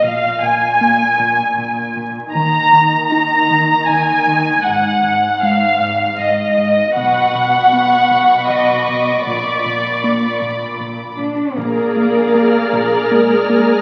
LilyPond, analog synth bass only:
\new Staff \with { instrumentName = "Analog synth bass" } { \clef bass \time 3/4 \key bes \phrygian \tempo 4 = 78 bes,8 bes,8 bes8 bes,8 bes,8 bes,8 | ees8 ees8 ees'8 ees8 ees8 ees8 | aes,8 aes,8 aes8 aes,8 aes,8 aes,8 | b,8 b,8 b8 b,8 b,8 b,8 |
bes,8 bes,8 bes8 bes,8 bes,8 bes,8 | bes,8 bes8 bes8 bes,8 bes8 bes8 | }